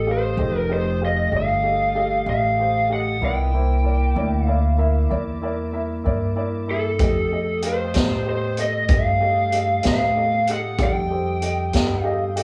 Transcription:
0.00 0.34 A1 medium
0.00 3.17 A3 medium
0.00 3.18 G4 medium
0.00 0.11 A4 medium
0.00 3.18 D#5 medium
0.07 0.30 G4 medium
0.07 0.30 A4 soft
0.07 0.30 F5 medium
0.11 0.58 C5 medium
0.37 1.29 F1 medium
0.37 0.62 G4 soft
0.37 0.62 A4 soft
0.37 0.62 D#5 medium
0.58 0.72 A#4 medium
0.69 0.93 G4 soft
0.69 0.93 A4 soft
0.69 1.00 C5 medium
0.69 0.93 D#5 medium
1.01 1.25 G4 soft
1.01 1.25 A4 soft
1.01 1.35 D#5 medium
1.01 1.25 F5 medium
1.32 2.24 G1 medium
1.32 1.56 G4 soft
1.32 1.56 A4 soft
1.32 1.56 D5 medium
1.36 2.25 F5 medium
1.63 1.87 G4 soft
1.63 1.87 A4 soft
1.63 1.88 D#5 medium
1.95 2.19 G4 soft
1.95 2.19 A4 soft
1.95 2.19 D#5 medium
2.26 3.18 A1 medium
2.26 2.50 G4 soft
2.26 2.51 A4 soft
2.26 2.51 F5 medium
2.26 2.87 F5 medium
2.59 2.82 G4 soft
2.59 2.82 A4 soft
2.59 2.83 C5 medium
2.90 3.13 G4 soft
2.90 3.14 A4 soft
2.90 3.14 D#5 medium
2.90 3.24 F#5 medium
3.20 4.13 C2 medium
3.20 3.52 B3 medium
3.20 3.45 E4 medium
3.20 3.52 F4 soft
3.20 3.45 A#4 medium
3.20 3.46 D5 medium
3.20 3.52 D#5 medium
3.25 4.45 G5 medium
3.50 6.95 A#3 medium
3.50 6.95 E4 medium
3.50 3.77 E4 soft
3.50 6.95 D5 medium
3.54 3.77 A#4 soft
3.54 3.77 C5 soft
3.83 4.07 E4 soft
3.83 4.08 A#4 soft
3.83 4.08 D5 medium
4.15 5.08 D2 medium
4.15 4.39 E4 medium
4.15 4.39 A#4 medium
4.15 4.40 D5 medium
4.45 4.70 E4 medium
4.45 4.71 A#4 medium
4.45 4.71 D5 medium
4.45 5.08 F5 medium
4.78 5.02 E4 medium
4.78 5.02 A#4 medium
4.78 5.03 E5 medium
5.09 6.03 E2 medium
5.09 5.33 E4 medium
5.09 5.34 A#4 medium
5.09 5.34 D5 medium
5.42 5.65 E4 medium
5.42 5.66 A#4 soft
5.42 5.66 D5 medium
5.73 5.97 E4 medium
5.73 5.97 A#4 medium
5.73 5.97 E5 medium
6.04 6.97 G2 medium
6.04 6.28 E4 medium
6.04 6.29 A#4 medium
6.04 6.29 D5 medium
6.35 6.60 E4 medium
6.35 6.60 A#4 medium
6.35 6.60 D5 medium
6.67 6.91 E4 soft
6.67 7.60 A4 medium
6.67 6.92 A#4 soft
6.67 6.92 E5 medium
6.98 7.91 F2 medium
6.98 10.74 A3 medium
6.98 10.74 G4 medium
6.98 7.24 G4 medium
6.98 7.24 A4 medium
6.98 10.74 D#5 medium
6.98 7.24 D#5 medium
6.98 kick medium
6.98 closed hi-hat medium
7.32 7.55 G4 soft
7.32 7.55 A4 soft
7.32 7.56 D#5 medium
7.62 7.86 G4 soft
7.62 7.87 A4 soft
7.62 8.28 C5 medium
7.62 7.87 F5 medium
7.62 closed hi-hat medium
7.94 8.87 A2 medium
7.94 8.18 G4 soft
7.94 8.18 A4 soft
7.94 8.19 D#5 medium
7.94 snare medium
7.94 closed hi-hat medium
8.26 8.50 G4 soft
8.26 8.50 A4 soft
8.26 8.60 C5 medium
8.26 8.50 D#5 medium
8.57 8.82 G4 soft
8.57 8.82 A4 soft
8.57 8.82 D#5 medium
8.57 closed hi-hat medium
8.61 8.92 D#5 medium
8.88 9.81 G2 medium
8.88 9.13 G4 soft
8.88 9.13 A4 soft
8.88 9.14 D#5 soft
8.88 kick loud
8.88 closed hi-hat medium
8.94 9.86 F5 medium
9.20 9.44 G4 soft
9.20 9.44 A4 soft
9.20 9.45 D#5 medium
9.52 9.76 G4 medium
9.52 9.76 A4 soft
9.52 9.76 D#5 medium
9.52 closed hi-hat medium
9.83 10.76 A2 medium
9.83 10.08 G4 soft
9.83 10.08 A4 soft
9.83 10.08 C5 medium
9.83 snare medium
9.83 closed hi-hat medium
9.88 10.51 F5 medium
10.16 10.39 G4 soft
10.16 10.40 A4 soft
10.16 10.40 D#5 medium
10.47 10.71 G4 soft
10.47 10.72 A4 soft
10.47 10.72 D#5 medium
10.47 closed hi-hat medium
10.51 10.79 F#5 medium
10.77 11.70 F2 medium
10.77 12.43 G3 medium
10.77 12.43 G4 medium
10.77 11.02 G4 medium
10.77 11.03 A4 soft
10.77 11.03 D5 medium
10.77 12.43 D#5 medium
10.77 kick medium
10.77 closed hi-hat medium
10.84 12.04 G5 medium
11.10 11.34 G4 soft
11.10 11.34 A4 soft
11.10 11.34 C5 soft
11.41 11.65 G4 soft
11.41 11.66 A4 soft
11.41 11.66 D#5 medium
11.41 closed hi-hat medium
11.73 12.43 G2 medium
11.73 11.97 G4 medium
11.73 11.97 A4 medium
11.73 11.98 D#5 medium
11.73 snare medium
11.73 closed hi-hat medium
12.04 12.28 G4 medium
12.04 12.28 A4 medium
12.04 12.29 D#5 medium
12.04 12.43 F5 medium
12.36 12.43 G4 medium
12.36 12.43 A4 soft
12.36 12.43 D#5 medium
12.36 closed hi-hat medium

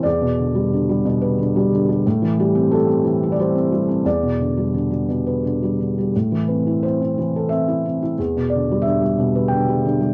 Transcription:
0.03 2.02 E2 soft
0.03 1.01 D5 medium
0.21 1.04 B2 soft
0.39 0.72 D3 soft
0.55 0.88 G3 soft
0.73 1.37 D3 soft
0.89 1.54 G3 soft
1.05 2.03 B2 soft
1.22 2.03 B4 soft
1.39 1.71 D3 soft
1.56 1.88 G3 soft
1.73 2.05 D3 soft
1.89 2.05 G3 soft
2.06 4.02 A2 soft
2.22 3.03 E3 soft
2.39 2.71 G3 soft
2.39 2.73 G4 medium
2.55 2.87 C4 soft
2.72 3.38 G3 soft
2.72 3.33 A4 medium
2.88 3.54 C4 soft
3.05 4.02 E3 soft
3.23 4.04 E4 soft
3.32 3.38 D5 soft
3.39 3.71 G3 soft
3.39 4.03 C5 medium
3.55 3.87 C4 soft
3.72 4.05 G3 soft
3.89 4.05 C4 soft
4.05 6.10 E2 soft
4.05 5.05 D5 medium
4.23 5.07 B2 soft
4.40 4.73 D3 soft
4.58 4.90 G3 soft
4.74 5.43 D3 soft
4.91 5.61 G3 soft
5.09 6.11 B2 soft
5.27 6.12 B4 soft
5.45 5.79 D3 soft
5.63 5.97 G3 soft
5.80 6.14 D3 soft
5.98 6.15 G3 soft
6.16 8.16 A2 soft
6.32 7.16 E3 soft
6.48 6.84 C4 soft
6.48 6.84 B4 soft
6.67 7.00 E4 soft
6.83 7.50 C4 soft
6.83 7.47 C5 soft
7.02 7.66 E4 soft
7.18 8.16 E3 soft
7.36 8.17 A4 soft
7.49 7.84 C4 soft
7.49 8.14 E5 medium
7.68 8.01 E4 soft
7.86 8.18 C4 soft
8.03 8.19 E4 soft
8.18 10.14 E2 soft
8.37 9.17 B2 soft
8.50 8.85 D5 soft
8.55 8.84 D3 soft
8.71 9.01 G3 soft
8.82 9.52 E5 medium
8.86 9.50 D3 soft
9.02 9.67 G3 soft
9.19 10.14 B2 soft
9.35 10.14 B4 soft
9.48 9.84 D3 soft
9.48 10.12 G5 medium
9.68 9.99 G3 soft
9.85 10.14 D3 soft
10.01 10.14 G3 soft

